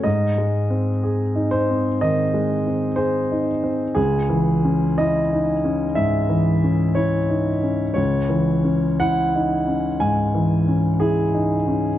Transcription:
\new Staff \with { instrumentName = "Grand piano" } { \time 4/4 \key cis \minor \tempo 4 = 60 << { dis''4. bis'8 dis''4 bis'8 r8 | gis'4 dis''4 e''4 cis''4 | cis''4 fis''4 gis''4 gis'4 | } \\ { \tuplet 3/2 { gis,8 gis8 bis8 gis'8 dis'8 bis8 dis8 gis8 bis8 gis'8 dis'8 bis8 } | \tuplet 3/2 { cis,8 e8 cis'8 e'8 dis'8 cis'8 gis,8 e8 cis'8 e'8 dis'8 cis'8 } | \tuplet 3/2 { cis,8 e8 cis'8 e'8 dis'8 cis'8 gis,8 e8 cis'8 e'8 dis'8 cis'8 } | } >> }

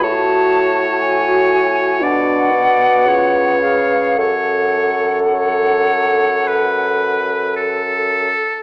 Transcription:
<<
  \new Staff \with { instrumentName = "Flute" } { \time 4/4 \key fis \minor \tempo 4 = 54 a''4 gis''4 fis''4. eis''8 | fis''2. a'4 | }
  \new Staff \with { instrumentName = "Oboe" } { \time 4/4 \key fis \minor cis''2 d''4 cis''4 | cis''4 cis''4 b'4 a'4 | }
  \new Staff \with { instrumentName = "French horn" } { \time 4/4 \key fis \minor fis'2 d'8 b'4. | a'2.~ a'8 r8 | }
  \new Staff \with { instrumentName = "Clarinet" } { \time 4/4 \key fis \minor fis'2 fis'4 eis'8 gis'8 | a'2.~ a'8 r8 | }
  \new Staff \with { instrumentName = "Bassoon" } { \clef bass \time 4/4 \key fis \minor a,2 b,4 cis4 | fis,2.~ fis,8 r8 | }
>>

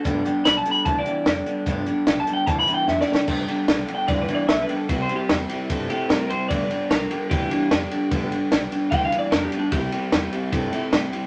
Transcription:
<<
  \new Staff \with { instrumentName = "Clean electric guitar" } { \time 4/4 \key g \major \tempo 4 = 149 fis''8 r8 \tuplet 3/2 { b''8 a''8 b''8 a''8 d''4~ } d''4~ | d''8 r8 \tuplet 3/2 { r8 a''8 g''8 a''8 b''8 g''8 e''8 d''4 } | r4 \tuplet 3/2 { r4 g''8 d''8 b'8 d''8 e''8 b'8 a'8 } | \tuplet 3/2 { b'8 c''8 g'8 } r4. g'8 bes'8 c''8 |
d''4 bes'4 g'2~ | g'4 r4 \tuplet 3/2 { g''8 f''8 d''8 bes'8 g'8 d'8 } | g'2 r2 | }
  \new Staff \with { instrumentName = "Steel-string acoustic guitar" } { \time 4/4 \key g \major <g, d g b d' g'>8 <g b d' g'>8 <g d' g'>8 <g b d' g'>8 <g, d g b d' g'>8 <g b d' g'>8 <g b d' g'>8 <g b d' g'>8 | <g, d g b d' g'>8 <g b d' g'>8 <g b d' g'>8 <g b d' g'>8 <g, d g b d' g'>8 <g b d' g'>8 <g b d' g'>8 <g b d' g'>8 | <g, d g b d' g'>8 <g b d' g'>8 <g b d' g'>8 <g b d' g'>8 <g, d g b d' g'>8 <g b d' g'>8 <g b d' g'>8 <g b d' g'>8 | <c g c' e' g'>8 <c' e' g'>8 <g c' e' g'>8 <c' e' g'>8 <c g c' e' g'>8 <c' e' g'>8 <g c' e' g'>8 <c' e' g'>8 |
<g, d g b d' g'>8 <g b d' g'>8 <g b d' g'>8 <g b d' g'>8 <g, d g b d' g'>8 <g b d' g'>8 <g b d' g'>8 <g b d' g'>8 | <g, d g b d' g'>8 <g b d' g'>8 <g b d' g'>8 <g b d' g'>8 <g, d g b d' g'>8 <g b d' g'>8 <g b d' g'>8 <g b d' g'>8 | <c g c' e' g'>8 <c' e' g'>8 <g c' e' g'>8 <c' e' g'>8 <c g c' e' g'>8 <c' e' g'>8 <g c' e' g'>8 <c' e' g'>8 | }
  \new Staff \with { instrumentName = "Clean electric guitar" } { \clef bass \time 4/4 \key g \major <g, d>8 <g, d>8 <g, d>8 <g, d>8 <g, e>8 <g, e>8 <g, d>8 <g, d>8 | <g, d>8 <g, d>8 <g, d>8 <g, d>8 <g, e>8 <g, e>8 <g, d>8 <g, d>8 | <g, d>8 <g, d>8 <g, d>8 <g, d>8 <g, e>8 <g, e>8 <g, d>8 <g, d>8 | <c g>8 <c g>8 <c g>8 <c g>8 <c a>8 <c a>8 <c g>8 <c g>8 |
<g, d>8 <g, d>8 <g, d>8 <g, d>8 <g, e>8 <g, e>8 <g, d>8 <g, d>8 | <g, d>8 <g, d>8 <g, d>8 <g, d>8 <g, e>8 <g, e>8 <g, d>8 <g, d>8 | <c g>8 <c g>8 <c g>8 <c g>8 <c a>8 <c a>8 <c g>8 <c g>8 | }
  \new Staff \with { instrumentName = "Upright bass" } { \clef bass \time 4/4 \key g \major g,,8 r8 b,,8 r8 d,8 r8 f,8 r8 | g,,8 r8 b,,8 r8 d,8 r8 f,8 r8 | g,,8 r8 b,,8 r8 d,8 r8 b,,8 r8 | c,8 r8 e,8 r8 g,8 r8 a,8 r8 |
g,,8 r8 b,,8 r8 d,8 r8 f,8 r8 | g,,8 r8 b,,8 r8 d,8 r8 f,8 r8 | c,8 r8 e,8 r8 g,8 r8 a,8 r8 | }
  \new DrumStaff \with { instrumentName = "Drums" } \drummode { \time 4/4 <hh bd>8 hh8 <hh sn>8 hh8 <hh bd>8 hh8 <hh sn>8 hh8 | <hh bd>8 hh8 <hh sn>8 hh8 <hh bd>8 hh8 \tuplet 3/2 { sn8 sn8 sn8 } | <cymc bd>8 cymr8 <cymr sn>8 cymr8 <bd cymr>8 cymr8 <cymr sn>8 cymr8 | <bd cymr>8 cymr8 <cymr sn>8 cymr8 <bd cymr>8 cymr8 <cymr sn>8 cymr8 |
<bd cymr>8 cymr8 <cymr sn>8 cymr8 <bd cymr>8 cymr8 <cymr sn>8 cymr8 | <bd cymr>8 cymr8 <cymr sn>8 cymr8 <bd cymr>8 cymr8 <cymr sn>8 cymr8 | <bd cymr>8 cymr8 <cymr sn>8 cymr8 <bd cymr>8 cymr8 <cymr sn>8 cymr8 | }
>>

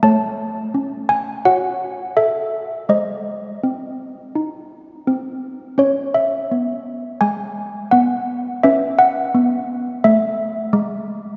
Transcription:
<<
  \new Staff \with { instrumentName = "Handbells" } { \time 4/4 \key cis \minor \tempo 4 = 84 << { a''4. gis''8 fis''4 e''4 | dis''2.~ dis''8 r8 | cis''8 e''4. gis''4 fis''4 | e''8 fis''4. e''2 | } \\ { cis''2 cis''2 | bis'1 | r1 | b'1 | } >> }
  \new Staff \with { instrumentName = "Handbells" } { \time 4/4 \key cis \minor a4 cis'4 fis'4 a'4 | gis4 bis4 dis'4 bis4 | cis'4 b4 gis4 b4 | cis'4 b4 a4 gis4 | }
>>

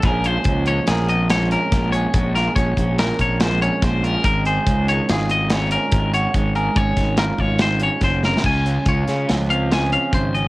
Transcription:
<<
  \new Staff \with { instrumentName = "Clean electric guitar" } { \time 5/4 \key des \major \tempo 4 = 143 bes'8 c''4 des''8 aes'8 ees''8 des''8 bes'4 des''8~ | des''8 bes'8 des''4 bes'8 des''8 c''8 des''8 c''8 bes'8 | bes'8 c''4 des''8 aes'8 ees''8 des''8 bes'4 des''8~ | des''8 bes'8 des''4 bes'8 des''8 c''8 des''8 c''8 bes'8 |
aes''4 des''4 r8 f''8 aes''8 f''8 c''8 ees''8 | }
  \new Staff \with { instrumentName = "Clean electric guitar" } { \time 5/4 \key des \major << { <f aes des' aes'>8 f'16 aes'16 des'4 bes'4 aes8 des'8 aes8 aes'8 | aes8 f'16 aes'16 des'4 bes'4 aes8 des'8 aes8 f'16 aes'16 | aes8 aes'8 des'4 f'4 aes8 des'8 aes8 ges'8 | aes8 aes'8 des'4 f'4 aes8 des'4. |
r8 des'8 f'8 des'4 c'8 f'16 aes'16 des'4 des'8 | } \\ { bes,4. f4 f,4. bes,4 | bes,4. f4 f,4. bes,4 | aes,4. ees4 aes,4. aes,4 | aes,4. ees4 aes,4. bes,8 c8 |
des2 f2 des4 | } >> }
  \new Staff \with { instrumentName = "Fingered electric bass" } { \clef bass \time 5/4 \key des \major bes,,4 des,4 bes,,2 bes,,4 | bes,,4 bes,,8 bes,,4 bes,,4. bes,,4 | aes,,4 des,4 aes,,2 aes,,4 | aes,,4 aes,,8 aes,,4 aes,,4. ges,,4 |
des,4 des,8 des8 des,2 aes,,4 | }
  \new DrumStaff \with { instrumentName = "Drums" } \drummode { \time 5/4 <hh bd>8 hh8 <hh bd>8 hh8 <hh sn>8 hh8 <hh sn>8 hh8 <hh bd sn>8 hh8 | <hh bd>8 <hh sn>8 <hh bd>8 <hh bd>8 <hh sn>8 <hh bd>8 <hh sn>8 hh8 <hh bd sn>8 hh8 | <hh bd>8 hh8 <hh bd>8 hh8 <hh sn>8 hh8 <hh sn>8 hh8 <hh bd>8 hh8 | <hh bd>8 hh8 <hh bd>8 <hh bd sn>8 <hh sn>8 <hh bd>8 <hh sn>8 hh8 \tuplet 3/2 { <hh bd sn>16 r16 r16 sn16 r16 sn16 } |
<cymc bd>8 hh8 <hh bd>8 <hh sn>8 <hh sn>8 hh8 <hh sn>8 hh8 <hh bd>8 hh8 | }
>>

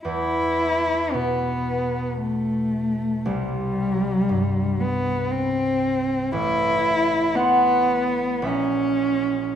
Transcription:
<<
  \new Staff \with { instrumentName = "Cello" } { \time 3/4 \key e \minor \tempo 4 = 57 e'4 b4 a4 | g4. b8 c'4 | e'4 b4 cis'4 | }
  \new Staff \with { instrumentName = "Harp" } { \clef bass \time 3/4 \key e \minor e,4 b,2 | c,4 g,2 | a,,4 <fis'' c'''>4 <ais,, e'' ais''>4 | }
>>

